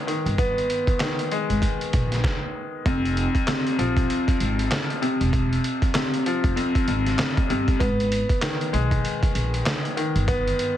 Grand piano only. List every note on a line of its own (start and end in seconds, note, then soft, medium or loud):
0.00 0.07 D#3 medium
0.00 1.30 G#3 medium
0.00 0.37 B3 medium
0.07 0.99 D#3 medium
0.39 2.86 B3 medium
1.01 2.86 D#3 medium
1.32 2.86 G#3 medium
2.86 5.33 F2 loud
3.48 5.00 C3 medium
3.79 6.25 F3 medium
5.02 5.94 C3 medium
5.96 7.48 C3 medium
6.26 7.81 F3 medium
6.56 6.86 F2 medium
6.88 7.81 F2 medium
7.50 7.81 C3 medium
7.80 10.27 B3 medium
8.42 9.95 D#3 medium
8.73 10.77 G#3 medium
9.97 10.77 D#3 medium
10.28 10.77 B3 loud